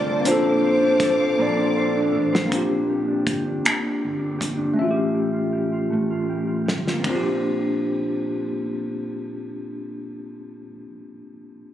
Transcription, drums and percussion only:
0, 0, Header, 1, 2, 480
1, 0, Start_track
1, 0, Key_signature, -2, "major"
1, 0, Tempo, 754717
1, 160, Time_signature, 6, 3, 24, 8
1, 7464, End_track
2, 0, Start_track
2, 0, Title_t, "Drums"
2, 161, Note_on_c, 9, 42, 86
2, 225, Note_off_c, 9, 42, 0
2, 635, Note_on_c, 9, 36, 94
2, 637, Note_on_c, 9, 42, 80
2, 699, Note_off_c, 9, 36, 0
2, 701, Note_off_c, 9, 42, 0
2, 1494, Note_on_c, 9, 38, 90
2, 1558, Note_off_c, 9, 38, 0
2, 1602, Note_on_c, 9, 36, 95
2, 1602, Note_on_c, 9, 42, 75
2, 1666, Note_off_c, 9, 36, 0
2, 1666, Note_off_c, 9, 42, 0
2, 2077, Note_on_c, 9, 36, 78
2, 2080, Note_on_c, 9, 42, 62
2, 2141, Note_off_c, 9, 36, 0
2, 2143, Note_off_c, 9, 42, 0
2, 2324, Note_on_c, 9, 42, 60
2, 2329, Note_on_c, 9, 26, 95
2, 2388, Note_off_c, 9, 42, 0
2, 2393, Note_off_c, 9, 26, 0
2, 2804, Note_on_c, 9, 36, 74
2, 2810, Note_on_c, 9, 42, 59
2, 2868, Note_off_c, 9, 36, 0
2, 2874, Note_off_c, 9, 42, 0
2, 4251, Note_on_c, 9, 38, 75
2, 4315, Note_off_c, 9, 38, 0
2, 4372, Note_on_c, 9, 38, 66
2, 4436, Note_off_c, 9, 38, 0
2, 4479, Note_on_c, 9, 36, 84
2, 4480, Note_on_c, 9, 51, 71
2, 4543, Note_off_c, 9, 36, 0
2, 4543, Note_off_c, 9, 51, 0
2, 7464, End_track
0, 0, End_of_file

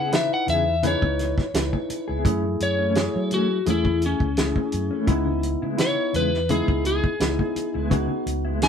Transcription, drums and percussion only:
0, 0, Header, 1, 2, 480
1, 0, Start_track
1, 0, Key_signature, 4, "minor"
1, 0, Tempo, 706714
1, 1530, Time_signature, 4, 2, 24, 8
1, 5897, End_track
2, 0, Start_track
2, 0, Title_t, "Drums"
2, 84, Note_on_c, 9, 42, 76
2, 91, Note_on_c, 9, 38, 110
2, 152, Note_off_c, 9, 42, 0
2, 159, Note_off_c, 9, 38, 0
2, 326, Note_on_c, 9, 42, 60
2, 394, Note_off_c, 9, 42, 0
2, 565, Note_on_c, 9, 42, 83
2, 633, Note_off_c, 9, 42, 0
2, 694, Note_on_c, 9, 36, 85
2, 762, Note_off_c, 9, 36, 0
2, 809, Note_on_c, 9, 42, 58
2, 815, Note_on_c, 9, 38, 30
2, 877, Note_off_c, 9, 42, 0
2, 883, Note_off_c, 9, 38, 0
2, 935, Note_on_c, 9, 36, 81
2, 940, Note_on_c, 9, 38, 34
2, 1003, Note_off_c, 9, 36, 0
2, 1008, Note_off_c, 9, 38, 0
2, 1049, Note_on_c, 9, 42, 91
2, 1055, Note_on_c, 9, 38, 113
2, 1116, Note_off_c, 9, 42, 0
2, 1123, Note_off_c, 9, 38, 0
2, 1176, Note_on_c, 9, 36, 65
2, 1244, Note_off_c, 9, 36, 0
2, 1289, Note_on_c, 9, 42, 62
2, 1357, Note_off_c, 9, 42, 0
2, 1527, Note_on_c, 9, 36, 93
2, 1529, Note_on_c, 9, 42, 74
2, 1595, Note_off_c, 9, 36, 0
2, 1597, Note_off_c, 9, 42, 0
2, 1768, Note_on_c, 9, 42, 65
2, 1836, Note_off_c, 9, 42, 0
2, 2006, Note_on_c, 9, 42, 68
2, 2012, Note_on_c, 9, 38, 102
2, 2074, Note_off_c, 9, 42, 0
2, 2080, Note_off_c, 9, 38, 0
2, 2246, Note_on_c, 9, 42, 54
2, 2314, Note_off_c, 9, 42, 0
2, 2487, Note_on_c, 9, 42, 69
2, 2555, Note_off_c, 9, 42, 0
2, 2614, Note_on_c, 9, 36, 84
2, 2682, Note_off_c, 9, 36, 0
2, 2728, Note_on_c, 9, 42, 59
2, 2796, Note_off_c, 9, 42, 0
2, 2854, Note_on_c, 9, 36, 79
2, 2922, Note_off_c, 9, 36, 0
2, 2967, Note_on_c, 9, 42, 76
2, 2973, Note_on_c, 9, 38, 105
2, 3035, Note_off_c, 9, 42, 0
2, 3041, Note_off_c, 9, 38, 0
2, 3095, Note_on_c, 9, 36, 69
2, 3163, Note_off_c, 9, 36, 0
2, 3206, Note_on_c, 9, 42, 60
2, 3274, Note_off_c, 9, 42, 0
2, 3446, Note_on_c, 9, 42, 72
2, 3447, Note_on_c, 9, 36, 91
2, 3514, Note_off_c, 9, 36, 0
2, 3514, Note_off_c, 9, 42, 0
2, 3689, Note_on_c, 9, 42, 61
2, 3757, Note_off_c, 9, 42, 0
2, 3928, Note_on_c, 9, 42, 89
2, 3934, Note_on_c, 9, 38, 102
2, 3996, Note_off_c, 9, 42, 0
2, 4002, Note_off_c, 9, 38, 0
2, 4172, Note_on_c, 9, 42, 56
2, 4239, Note_off_c, 9, 42, 0
2, 4307, Note_on_c, 9, 38, 37
2, 4375, Note_off_c, 9, 38, 0
2, 4408, Note_on_c, 9, 42, 73
2, 4476, Note_off_c, 9, 42, 0
2, 4539, Note_on_c, 9, 36, 84
2, 4606, Note_off_c, 9, 36, 0
2, 4652, Note_on_c, 9, 42, 57
2, 4720, Note_off_c, 9, 42, 0
2, 4780, Note_on_c, 9, 36, 78
2, 4848, Note_off_c, 9, 36, 0
2, 4892, Note_on_c, 9, 42, 80
2, 4899, Note_on_c, 9, 38, 111
2, 4960, Note_off_c, 9, 42, 0
2, 4966, Note_off_c, 9, 38, 0
2, 5020, Note_on_c, 9, 36, 67
2, 5088, Note_off_c, 9, 36, 0
2, 5135, Note_on_c, 9, 42, 75
2, 5203, Note_off_c, 9, 42, 0
2, 5374, Note_on_c, 9, 36, 94
2, 5374, Note_on_c, 9, 42, 75
2, 5442, Note_off_c, 9, 36, 0
2, 5442, Note_off_c, 9, 42, 0
2, 5615, Note_on_c, 9, 42, 68
2, 5682, Note_off_c, 9, 42, 0
2, 5853, Note_on_c, 9, 42, 86
2, 5859, Note_on_c, 9, 38, 106
2, 5897, Note_off_c, 9, 38, 0
2, 5897, Note_off_c, 9, 42, 0
2, 5897, End_track
0, 0, End_of_file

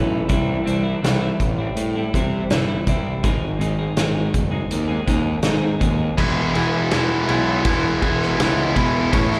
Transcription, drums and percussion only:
0, 0, Header, 1, 2, 480
1, 0, Start_track
1, 0, Key_signature, 4, "major"
1, 0, Tempo, 736196
1, 194, Time_signature, 4, 2, 24, 8
1, 6127, End_track
2, 0, Start_track
2, 0, Title_t, "Drums"
2, 188, Note_on_c, 9, 42, 76
2, 194, Note_on_c, 9, 36, 103
2, 253, Note_off_c, 9, 42, 0
2, 259, Note_off_c, 9, 36, 0
2, 438, Note_on_c, 9, 42, 57
2, 503, Note_off_c, 9, 42, 0
2, 679, Note_on_c, 9, 42, 83
2, 683, Note_on_c, 9, 38, 101
2, 745, Note_off_c, 9, 42, 0
2, 748, Note_off_c, 9, 38, 0
2, 912, Note_on_c, 9, 42, 57
2, 913, Note_on_c, 9, 36, 79
2, 977, Note_off_c, 9, 42, 0
2, 978, Note_off_c, 9, 36, 0
2, 1152, Note_on_c, 9, 42, 83
2, 1217, Note_off_c, 9, 42, 0
2, 1395, Note_on_c, 9, 36, 79
2, 1400, Note_on_c, 9, 42, 61
2, 1460, Note_off_c, 9, 36, 0
2, 1466, Note_off_c, 9, 42, 0
2, 1632, Note_on_c, 9, 42, 80
2, 1635, Note_on_c, 9, 38, 107
2, 1697, Note_off_c, 9, 42, 0
2, 1701, Note_off_c, 9, 38, 0
2, 1870, Note_on_c, 9, 42, 67
2, 1872, Note_on_c, 9, 36, 82
2, 1935, Note_off_c, 9, 42, 0
2, 1937, Note_off_c, 9, 36, 0
2, 2110, Note_on_c, 9, 42, 77
2, 2112, Note_on_c, 9, 36, 108
2, 2175, Note_off_c, 9, 42, 0
2, 2177, Note_off_c, 9, 36, 0
2, 2353, Note_on_c, 9, 42, 57
2, 2419, Note_off_c, 9, 42, 0
2, 2586, Note_on_c, 9, 42, 83
2, 2589, Note_on_c, 9, 38, 100
2, 2651, Note_off_c, 9, 42, 0
2, 2655, Note_off_c, 9, 38, 0
2, 2829, Note_on_c, 9, 42, 66
2, 2831, Note_on_c, 9, 36, 87
2, 2894, Note_off_c, 9, 42, 0
2, 2896, Note_off_c, 9, 36, 0
2, 3069, Note_on_c, 9, 42, 90
2, 3134, Note_off_c, 9, 42, 0
2, 3309, Note_on_c, 9, 36, 80
2, 3309, Note_on_c, 9, 42, 56
2, 3312, Note_on_c, 9, 38, 30
2, 3374, Note_off_c, 9, 36, 0
2, 3374, Note_off_c, 9, 42, 0
2, 3377, Note_off_c, 9, 38, 0
2, 3537, Note_on_c, 9, 42, 84
2, 3540, Note_on_c, 9, 38, 103
2, 3602, Note_off_c, 9, 42, 0
2, 3605, Note_off_c, 9, 38, 0
2, 3788, Note_on_c, 9, 42, 62
2, 3789, Note_on_c, 9, 36, 93
2, 3853, Note_off_c, 9, 42, 0
2, 3854, Note_off_c, 9, 36, 0
2, 4029, Note_on_c, 9, 49, 99
2, 4031, Note_on_c, 9, 36, 100
2, 4094, Note_off_c, 9, 49, 0
2, 4096, Note_off_c, 9, 36, 0
2, 4271, Note_on_c, 9, 51, 62
2, 4336, Note_off_c, 9, 51, 0
2, 4507, Note_on_c, 9, 51, 84
2, 4510, Note_on_c, 9, 38, 105
2, 4572, Note_off_c, 9, 51, 0
2, 4575, Note_off_c, 9, 38, 0
2, 4750, Note_on_c, 9, 51, 65
2, 4816, Note_off_c, 9, 51, 0
2, 4986, Note_on_c, 9, 51, 88
2, 4989, Note_on_c, 9, 36, 107
2, 5051, Note_off_c, 9, 51, 0
2, 5054, Note_off_c, 9, 36, 0
2, 5230, Note_on_c, 9, 51, 62
2, 5231, Note_on_c, 9, 36, 86
2, 5295, Note_off_c, 9, 51, 0
2, 5296, Note_off_c, 9, 36, 0
2, 5359, Note_on_c, 9, 38, 35
2, 5424, Note_off_c, 9, 38, 0
2, 5475, Note_on_c, 9, 51, 95
2, 5478, Note_on_c, 9, 38, 111
2, 5540, Note_off_c, 9, 51, 0
2, 5543, Note_off_c, 9, 38, 0
2, 5712, Note_on_c, 9, 36, 86
2, 5713, Note_on_c, 9, 51, 72
2, 5777, Note_off_c, 9, 36, 0
2, 5778, Note_off_c, 9, 51, 0
2, 5953, Note_on_c, 9, 36, 115
2, 5953, Note_on_c, 9, 51, 97
2, 6018, Note_off_c, 9, 36, 0
2, 6018, Note_off_c, 9, 51, 0
2, 6077, Note_on_c, 9, 38, 32
2, 6127, Note_off_c, 9, 38, 0
2, 6127, End_track
0, 0, End_of_file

